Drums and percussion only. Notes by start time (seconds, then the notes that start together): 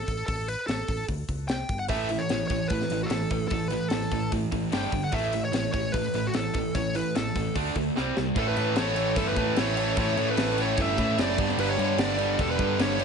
0.08 kick, open hi-hat
0.28 kick, open hi-hat
0.48 open hi-hat
0.68 snare, open hi-hat
0.88 kick, open hi-hat
1.08 kick, open hi-hat
1.29 kick, open hi-hat
1.49 snare, open hi-hat
1.69 kick, open hi-hat
1.88 kick, open hi-hat
2.09 open hi-hat
2.29 snare, open hi-hat
2.50 kick, open hi-hat
2.70 kick, open hi-hat
2.82 snare
2.90 open hi-hat
3.10 snare, open hi-hat
3.31 kick, open hi-hat
3.50 kick, open hi-hat
3.70 open hi-hat
3.90 snare, open hi-hat
4.11 kick, open hi-hat
4.32 kick, open hi-hat
4.52 kick, open hi-hat
4.72 snare, open hi-hat
4.92 kick, open hi-hat
5.12 kick, open hi-hat
5.33 open hi-hat
5.53 snare, open hi-hat
5.74 kick, open hi-hat
5.94 kick, open hi-hat
6.14 open hi-hat
6.34 snare, open hi-hat
6.54 kick, open hi-hat
6.75 kick, open hi-hat
6.95 open hi-hat
7.16 snare, open hi-hat
7.36 kick, open hi-hat
7.56 kick, open hi-hat
7.76 kick, open hi-hat
7.97 snare
8.17 snare
8.36 kick, crash
8.56 crash
8.76 snare, crash
8.96 crash
9.16 kick, crash
9.36 kick, crash
9.56 snare, crash
9.77 crash
9.97 kick, crash
10.17 crash
10.37 snare, crash
10.58 crash
10.77 kick, crash
10.98 kick, crash
11.18 snare, crash
11.38 kick, crash
11.49 snare
11.58 crash
11.79 crash
11.98 snare, crash
12.18 crash
12.39 kick, crash
12.59 kick, crash
12.79 snare, crash
12.99 crash